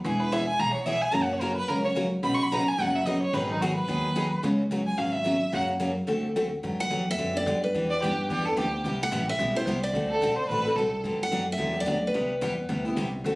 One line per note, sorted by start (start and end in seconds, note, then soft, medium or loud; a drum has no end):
0.04 0.48 E1 medium
0.04 0.23 E3 medium
0.04 0.23 B3 medium
0.04 0.23 E4 medium
0.04 0.22 G#4 medium
0.04 0.24 G#4 medium
0.20 0.34 B4 medium
0.32 0.42 E3 medium
0.32 0.42 B3 medium
0.32 0.42 E4 medium
0.32 0.43 G#4 loud
0.32 0.48 E5 medium
0.48 0.61 G#5 medium
0.59 1.03 B1 medium
0.59 0.78 E3 medium
0.59 0.78 B3 medium
0.59 0.78 E4 medium
0.59 0.78 G#4 medium
0.59 0.73 A#5 loud
0.74 0.87 C#5 medium
0.85 0.96 E3 medium
0.85 0.96 B3 medium
0.85 0.97 E4 medium
0.85 0.97 G#4 medium
0.85 1.03 E5 medium
1.02 1.15 G#5 medium
1.11 1.58 F#1 medium
1.11 1.31 C#3 medium
1.11 1.31 F#3 medium
1.11 1.32 A#3 medium
1.11 1.32 C#4 medium
1.11 1.32 F#4 medium
1.11 1.24 A#5 loud
1.23 1.34 F#5 medium
1.33 1.43 C#5 medium
1.41 1.51 C#3 medium
1.41 1.52 F#3 medium
1.41 1.51 A#3 medium
1.41 1.52 C#4 medium
1.41 1.52 F#4 medium
1.41 1.56 A#4 medium
1.56 1.70 B4 loud
1.68 2.13 C#2 medium
1.68 1.87 C#3 medium
1.68 1.87 F#3 medium
1.68 1.88 A#3 medium
1.68 1.88 C#4 medium
1.68 1.88 F#4 medium
1.68 1.84 A#4 medium
1.84 1.91 C#5 loud
1.95 2.06 C#3 medium
1.95 2.06 F#3 medium
1.95 2.06 A#3 medium
1.95 2.07 C#4 medium
1.95 2.07 F#4 medium
2.23 2.67 B1 medium
2.23 2.42 B2 medium
2.23 2.42 C#3 medium
2.23 2.42 F#3 medium
2.23 2.42 B3 medium
2.23 2.42 D#4 medium
2.23 2.42 B4 medium
2.23 2.36 B5 medium
2.35 2.44 C#6 medium
2.43 2.54 B5 medium
2.52 2.62 B2 medium
2.52 2.62 C#3 medium
2.52 2.62 F#3 medium
2.52 2.62 B3 medium
2.52 2.62 D#4 loud
2.52 2.62 B4 loud
2.52 2.69 A#5 medium
2.68 2.83 G#5 loud
2.78 3.22 F#1 medium
2.78 2.97 B2 medium
2.78 2.98 C#3 medium
2.78 2.97 F#3 medium
2.78 2.98 B3 medium
2.78 2.98 D#4 medium
2.78 2.98 B4 medium
2.78 2.97 F#5 medium
2.96 3.07 E5 medium
3.06 3.16 B2 medium
3.06 3.16 C#3 medium
3.06 3.17 F#3 medium
3.06 3.16 B3 medium
3.06 3.17 D#4 medium
3.06 3.17 B4 medium
3.06 3.21 D#5 medium
3.23 3.35 C#5 medium
3.33 3.77 G#1 medium
3.33 3.52 D#3 medium
3.33 3.52 F#3 medium
3.33 3.52 B3 medium
3.33 3.52 D#4 medium
3.33 3.53 G#4 medium
3.33 3.49 B4 medium
3.51 3.63 D#4 medium
3.61 3.72 D#3 medium
3.61 3.72 F#3 loud
3.61 3.72 B3 loud
3.61 3.72 D#4 loud
3.61 3.75 F#4 medium
3.61 3.72 G#4 loud
3.76 4.39 B4 medium
3.88 4.32 D#2 medium
3.88 4.06 D#3 medium
3.88 4.07 F#3 medium
3.88 4.07 B3 medium
3.88 4.07 D#4 medium
3.88 4.07 G#4 medium
4.16 4.26 D#3 medium
4.16 4.26 F#3 medium
4.16 4.26 B3 medium
4.16 4.26 D#4 medium
4.16 4.26 G#4 loud
4.43 4.87 C#2 loud
4.43 4.61 C#3 medium
4.43 4.62 F#3 medium
4.43 4.62 B3 medium
4.43 4.62 C#4 medium
4.43 4.62 F#4 medium
4.71 4.81 C#3 medium
4.71 4.81 F#3 medium
4.71 4.81 B3 medium
4.71 4.81 C#4 medium
4.71 4.81 F#4 loud
4.87 4.99 G#5 loud
4.97 5.42 G#1 medium
4.97 5.16 C#3 medium
4.97 5.16 F#3 medium
4.97 5.16 B3 medium
4.97 5.16 C#4 medium
4.97 5.17 F#4 medium
4.97 5.14 F5 medium
5.13 5.53 E5 medium
5.24 5.35 C#3 medium
5.24 5.35 F#3 medium
5.24 5.36 B3 medium
5.24 5.36 C#4 medium
5.24 5.36 F#4 loud
5.52 5.97 F#2 medium
5.52 5.71 C#3 medium
5.52 5.71 F#3 medium
5.52 5.71 A#3 medium
5.52 5.72 C#4 medium
5.52 5.71 F#4 medium
5.52 5.63 F#5 medium
5.80 5.90 C#3 loud
5.80 5.90 F#3 medium
5.80 5.91 A#3 medium
5.80 5.91 C#4 medium
5.80 5.91 F#4 loud
6.07 6.52 D2 medium
6.07 6.26 D3 medium
6.07 6.26 A3 medium
6.07 6.27 C4 medium
6.07 6.26 F#4 medium
6.07 6.27 A4 medium
6.36 6.46 D3 medium
6.36 6.46 A3 medium
6.36 6.46 C4 medium
6.36 6.46 F#4 medium
6.36 6.47 A4 medium
6.63 6.78 G2 medium
6.63 6.82 D3 medium
6.63 6.82 F#3 medium
6.63 6.82 B3 medium
6.63 6.82 D4 medium
6.63 6.82 G4 medium
6.79 7.08 F#5 medium
6.79 muted upright bass stroke soft
6.90 7.17 E2 medium
6.90 7.01 D3 medium
6.90 7.01 F#3 medium
6.90 7.01 B3 medium
6.90 7.01 D4 medium
6.90 7.02 G4 medium
7.11 7.37 E5 medium
7.18 7.45 F#2 medium
7.18 7.33 D3 medium
7.18 7.33 F#3 medium
7.18 7.34 B3 medium
7.18 7.33 D4 medium
7.18 7.32 G4 medium
7.33 7.46 B3 soft
7.33 7.46 D4 soft
7.33 7.45 G4 soft
7.33 7.61 D5 medium
7.46 7.73 G2 medium
7.46 7.57 D3 medium
7.46 7.57 F#3 medium
7.46 7.57 B3 medium
7.46 7.57 D4 medium
7.46 7.57 G4 medium
7.64 8.42 B4 medium
7.74 8.01 E2 medium
7.74 7.92 E3 medium
7.74 7.93 B3 medium
7.74 7.93 D4 medium
7.74 7.93 G4 medium
7.90 8.01 D5 medium
8.02 8.29 G2 medium
8.02 8.12 E3 medium
8.02 8.13 B3 medium
8.02 8.13 D4 medium
8.02 8.28 G4 medium
8.02 8.13 G4 loud
8.29 8.56 E2 medium
8.29 8.44 E3 medium
8.29 8.45 B3 medium
8.29 8.44 D4 medium
8.29 8.47 G4 medium
8.29 8.42 G4 medium
8.44 8.56 B3 soft
8.44 8.56 D4 medium
8.44 8.56 G4 medium
8.44 8.57 A4 medium
8.57 8.84 D2 medium
8.57 8.67 E3 medium
8.57 8.67 B3 medium
8.57 8.67 D4 medium
8.57 8.67 G4 medium
8.57 8.91 G4 medium
8.84 9.11 C2 medium
8.84 9.03 C3 medium
8.84 9.03 G3 medium
8.84 9.03 B3 medium
8.84 9.03 E4 medium
8.84 9.04 G4 medium
9.03 9.29 F#5 loud
9.12 9.38 A1 medium
9.12 9.22 C3 medium
9.12 9.22 G3 medium
9.12 9.22 B3 medium
9.12 9.22 E4 medium
9.12 9.22 G4 medium
9.29 9.57 E5 medium
9.39 9.65 B1 medium
9.39 9.54 C3 medium
9.39 9.55 G3 medium
9.39 9.54 B3 medium
9.39 9.55 E4 medium
9.39 9.54 G4 medium
9.55 9.67 B3 soft
9.55 9.67 E4 medium
9.55 9.67 G4 medium
9.55 9.83 C5 medium
9.66 9.93 C2 medium
9.66 9.77 C3 medium
9.66 9.77 G3 medium
9.66 9.78 B3 medium
9.66 9.78 E4 medium
9.66 9.78 G4 medium
9.83 10.62 D5 medium
9.93 10.20 D2 medium
9.93 10.13 D3 medium
9.93 10.13 A3 medium
9.93 10.14 C4 medium
9.93 10.13 F#4 medium
9.93 10.14 A4 medium
10.11 10.37 A4 medium
10.21 10.48 B1 medium
10.21 10.32 D3 medium
10.21 10.33 A3 medium
10.21 10.33 C4 medium
10.21 10.33 F#4 medium
10.21 10.33 A4 medium
10.36 10.49 C5 medium
10.49 10.75 A1 medium
10.49 10.65 D3 medium
10.49 10.65 A3 medium
10.49 10.65 C4 medium
10.49 10.65 F#4 medium
10.49 10.65 A4 medium
10.49 10.78 B4 medium
10.66 10.77 C4 soft
10.66 10.77 F#4 soft
10.66 10.77 A4 medium
10.76 11.03 C2 medium
10.76 10.87 D3 medium
10.76 10.88 A3 medium
10.76 10.88 C4 medium
10.76 10.88 F#4 medium
10.76 11.12 A4 medium
10.76 10.88 A4 medium
11.04 11.31 G2 medium
11.04 11.23 D3 medium
11.04 11.23 F#3 medium
11.04 11.23 B3 medium
11.04 11.23 D4 medium
11.04 11.23 G4 medium
11.23 11.47 F#5 medium
11.31 11.59 F#2 medium
11.31 11.42 D3 medium
11.31 11.42 F#3 medium
11.31 11.42 B3 medium
11.31 11.43 D4 medium
11.31 11.43 G4 medium
11.52 11.78 E5 medium
11.57 11.86 E2 medium
11.57 11.73 D3 medium
11.57 11.74 F#3 medium
11.57 11.74 B3 medium
11.57 11.73 D4 medium
11.57 11.72 G4 medium
11.73 11.85 B3 soft
11.73 11.85 D4 soft
11.73 11.86 G4 soft
11.80 12.03 D5 medium
11.86 12.14 D2 medium
11.86 11.97 D3 medium
11.86 11.97 F#3 medium
11.86 11.97 B3 medium
11.86 11.97 D4 medium
11.86 11.97 G4 medium
12.07 12.83 B4 medium
12.14 12.41 C2 medium
12.14 12.33 C3 medium
12.14 12.33 G3 medium
12.14 12.33 B3 medium
12.14 12.33 E4 medium
12.14 12.33 G4 medium
12.41 12.68 E2 medium
12.41 12.52 C3 medium
12.41 12.52 G3 medium
12.41 12.52 B3 loud
12.41 12.52 E4 medium
12.41 12.53 G4 medium
12.69 12.96 D2 medium
12.69 12.84 C3 medium
12.69 12.84 G3 medium
12.69 12.84 B3 medium
12.69 12.85 E4 medium
12.69 12.84 G4 medium
12.85 12.97 B3 soft
12.85 12.97 E4 soft
12.85 12.97 G4 soft
12.96 13.24 C2 medium
12.96 13.07 C3 medium
12.96 13.07 G3 medium
12.96 13.08 B3 medium
12.96 13.08 E4 medium
12.96 13.08 G4 medium
13.24 13.35 D2 medium
13.24 13.35 D3 medium
13.24 13.35 A3 medium
13.24 13.35 C4 medium
13.24 13.35 F#4 medium
13.24 13.35 A4 medium